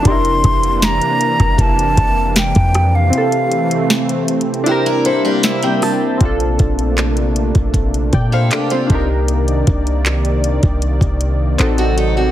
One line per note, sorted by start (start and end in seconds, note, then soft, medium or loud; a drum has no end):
0.00 6.17 C3 medium
0.00 3.09 D4 medium
0.00 3.08 D4 medium
0.05 0.42 F1 loud
0.05 3.10 E3 medium
0.05 3.10 A#3 medium
0.05 0.12 D#4 soft
0.05 3.10 G4 medium
0.05 0.86 C6 loud
0.05 kick loud
0.05 closed hi-hat medium
0.10 3.12 E4 medium
0.10 3.11 A#4 medium
0.25 closed hi-hat medium
0.44 0.99 F1 loud
0.44 kick loud
0.44 closed hi-hat medium
0.63 closed hi-hat medium
0.82 1.63 A#5 loud
0.82 snare loud
0.82 closed hi-hat medium
1.02 closed hi-hat medium
1.21 closed hi-hat medium
1.40 1.58 F1 medium
1.40 kick medium
1.40 cross-stick medium
1.40 closed hi-hat medium
1.58 1.96 F1 loud
1.58 2.37 A5 loud
1.58 kick loud
1.58 closed hi-hat medium
1.79 closed hi-hat soft
1.97 2.53 F1 loud
1.97 kick medium
1.97 closed hi-hat medium
2.36 2.97 G5 loud
2.36 snare loud
2.36 closed hi-hat medium
2.55 3.11 F2 loud
2.55 kick medium
2.55 closed hi-hat medium
2.75 cross-stick loud
2.75 closed hi-hat medium
2.95 4.10 F5 medium
3.10 4.64 E3 medium
3.10 4.65 E3 medium
3.10 4.65 A3 medium
3.10 4.62 C4 medium
3.10 6.18 C4 medium
3.10 closed hi-hat medium
3.15 4.65 G4 medium
3.15 4.66 A4 medium
3.32 closed hi-hat soft
3.52 closed hi-hat medium
3.71 closed hi-hat medium
3.90 snare loud
3.90 closed hi-hat medium
4.09 closed hi-hat medium
4.28 closed hi-hat medium
4.41 closed hi-hat medium
4.54 closed hi-hat soft
4.64 6.19 G3 medium
4.64 6.19 A#3 medium
4.64 6.16 D4 medium
4.64 6.17 E4 medium
4.64 4.85 G4 medium
4.64 4.85 C5 medium
4.64 closed hi-hat medium
4.69 6.19 G4 medium
4.69 6.20 A#4 medium
4.86 5.05 E4 medium
4.86 5.04 A#4 medium
4.86 closed hi-hat medium
5.05 5.24 E4 medium
5.05 5.24 A4 medium
5.05 5.41 C5 medium
5.05 closed hi-hat medium
5.25 5.43 D4 medium
5.25 5.43 G4 medium
5.43 5.62 A#3 medium
5.43 5.62 E4 medium
5.43 5.62 E5 medium
5.43 snare loud
5.43 closed hi-hat medium
5.63 6.18 G3 medium
5.63 6.18 C4 medium
5.63 5.81 G5 medium
5.63 closed hi-hat medium
5.82 6.18 A5 medium
5.82 cross-stick loud
5.82 open hi-hat medium
6.18 6.58 A#1 loud
6.18 12.31 C3 medium
6.18 8.87 A3 medium
6.18 11.55 A#3 medium
6.18 8.84 C4 medium
6.18 8.86 D4 medium
6.18 8.87 D4 medium
6.18 kick loud
6.18 closed hi-hat medium
6.23 8.87 F4 medium
6.23 8.11 A4 medium
6.40 closed hi-hat soft
6.59 7.52 A#1 loud
6.59 kick medium
6.59 closed hi-hat medium
6.79 closed hi-hat soft
6.98 clap loud
6.98 closed hi-hat medium
7.17 closed hi-hat soft
7.36 closed hi-hat medium
7.55 8.11 A#1 loud
7.55 kick medium
7.55 closed hi-hat soft
7.74 kick medium
7.74 closed hi-hat medium
7.94 closed hi-hat soft
8.13 8.50 A#2 loud
8.13 8.32 D5 medium
8.13 8.32 G5 medium
8.13 kick medium
8.13 closed hi-hat medium
8.32 8.51 E4 medium
8.32 8.51 A4 medium
8.32 8.51 C5 medium
8.32 8.51 F5 medium
8.51 8.70 D4 medium
8.51 8.70 G4 medium
8.51 8.71 A4 medium
8.51 8.70 D5 medium
8.51 clap loud
8.51 closed hi-hat medium
8.70 9.08 C4 medium
8.70 9.07 F4 medium
8.70 8.91 G4 medium
8.70 9.08 C5 medium
8.70 closed hi-hat medium
8.87 9.64 C2 loud
8.87 12.31 D#3 medium
8.87 11.54 D4 medium
8.87 11.55 D#4 medium
8.87 12.31 D5 medium
8.87 kick loud
8.87 closed hi-hat medium
8.92 11.56 G4 medium
8.92 11.57 A#4 medium
9.28 closed hi-hat medium
9.48 closed hi-hat soft
9.67 10.59 C2 loud
9.67 kick loud
9.67 closed hi-hat medium
9.87 closed hi-hat soft
10.06 clap loud
10.06 closed hi-hat medium
10.25 closed hi-hat soft
10.44 closed hi-hat medium
10.63 11.00 C2 loud
10.63 kick medium
10.63 closed hi-hat soft
10.82 closed hi-hat medium
11.01 11.57 C2 medium
11.01 kick medium
11.01 closed hi-hat soft
11.21 closed hi-hat medium
11.58 12.31 A1 loud
11.58 12.31 F#3 medium
11.58 12.31 C4 medium
11.58 12.31 D#4 medium
11.58 12.31 F#4 medium
11.58 12.31 A4 medium
11.58 clap loud
11.58 closed hi-hat medium
11.78 11.97 C4 medium
11.78 11.97 F#4 medium
11.78 closed hi-hat soft
11.98 12.16 D#4 medium
11.98 12.16 A4 medium
11.98 closed hi-hat medium
12.17 12.31 C4 medium
12.17 12.31 F#4 medium